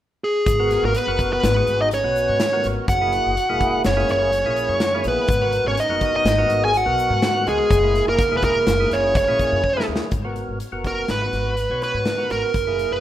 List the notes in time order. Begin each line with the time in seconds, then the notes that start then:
0.24 G#4
0.46 G#1, kick, closed hi-hat, shaker
0.59 B3 F#4 A#4
0.71 snare, closed hi-hat
0.83 G#1 A#3 A#4
0.94 B3 B4, closed hi-hat
1.07 F#1 B3 F#4 A#4
1.19 kick, closed hi-hat
1.33 B3 B4
1.43 G#1, snare, closed hi-hat, shaker
1.56 B3 F#4 G#4
1.67 G#1, closed hi-hat
1.80 D#4 D#5
1.91 C#4 C#5, closed hi-hat, shaker
2.04 B1 B3 F#4 B4
2.16 closed hi-hat, shaker
2.29 G#2
2.40 snare, closed hi-hat
2.53 B3 F#4 A#4
2.64 G#1, snare, closed hi-hat
2.88 F#1 F#4 F#5, kick, closed hi-hat, shaker
3.01 A#3 E4 G#4
3.13 closed hi-hat
3.26 F#1
3.37 closed hi-hat
3.49 E1 A#3 E4 G#4
3.61 kick, closed hi-hat
3.84 F#1 C#4 C#5, snare, closed hi-hat, shaker
3.97 A#3 E4 G#4
4.09 F#1 C#4 C#5, closed hi-hat
4.32 closed hi-hat, shaker
4.46 A#1 A#3 E4 G#4
4.56 closed hi-hat, shaker
4.69 F#2
4.80 snare, closed hi-hat
4.95 A#3 E4 G#4
5.04 A#1 B3 B4, closed hi-hat
5.28 G#1, kick, closed hi-hat, shaker
5.42 B3 F#4 A#4
5.53 closed hi-hat
5.64 G#1 C#4 C#5
5.77 D#5, snare, closed hi-hat
5.82 D#4
5.89 F#1 B3 F#4 A#4
6.01 kick, closed hi-hat
6.15 D#4 D#5
6.25 G#1, snare, closed hi-hat, shaker
6.38 B3 F#4 A#4
6.50 G#1, closed hi-hat
6.63 G#4 G#5
6.74 F#4 F#5, closed hi-hat, shaker
6.86 B1 B3 F#4 A#4
6.98 closed hi-hat, shaker
7.10 G#2
7.22 snare, closed hi-hat
7.34 B3 F#4 A#4
7.46 C#2 G#3 G#4, closed hi-hat
7.70 F#1, kick, closed hi-hat, shaker
7.83 A#3 E4 G#4
7.95 snare, closed hi-hat
8.07 F#1 A#3 A#4
8.19 kick, snare, closed hi-hat, shaker
8.31 E1 A#3 E4 G#4
8.36 B3 B4
8.43 A#3 A#4, kick, closed hi-hat
8.67 F#1, snare, closed hi-hat, shaker
8.80 A#3 E4 G#4
8.91 F#1 C#4 C#5, closed hi-hat
9.15 C#4 C#5, kick, closed hi-hat
9.28 A#1 A#3 E4 G#4
9.39 kick, closed hi-hat, shaker
9.52 F#2
9.64 kick
9.77 A#3 E4 G#4, snare
9.88 D#2
9.96 snare
10.11 G#1, kick, closed hi-hat
10.24 B3 F#4 A#4
10.36 closed hi-hat
10.49 G#1
10.60 closed hi-hat
10.72 F#1 B3 F#4 A#4
10.84 A#4, kick, closed hi-hat
11.08 G#1 B4, snare, closed hi-hat
11.22 B3 F#4 B4
11.33 G#1, snare, closed hi-hat
11.57 closed hi-hat
11.70 B1 B3 F#4 C#5
11.82 B4, snare, closed hi-hat
11.94 G#2
12.06 snare, closed hi-hat
12.18 B3 F#4 A#4
12.30 G#1 A#4, snare, closed hi-hat
12.54 F#1, kick, closed hi-hat
12.67 A#3 E4 G#4
12.79 closed hi-hat
12.91 F#1 B4